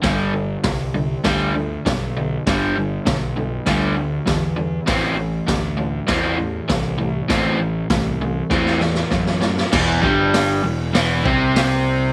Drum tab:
CC |----------------|----------------|----------------|----------------|
HH |o---o---o---o---|o---o---o---o---|o---o---o---o---|o---o-----------|
SD |o---o---o---o---|o---o---o---o---|o---o---o---o---|o---o---oooooooo|
BD |o---o---o---o---|o---o---o---o---|o---o---o---o---|o---o---o---o---|

CC |x---------------|
HH |----o---o---o---|
SD |o---o---o---o---|
BD |o-o-------o-----|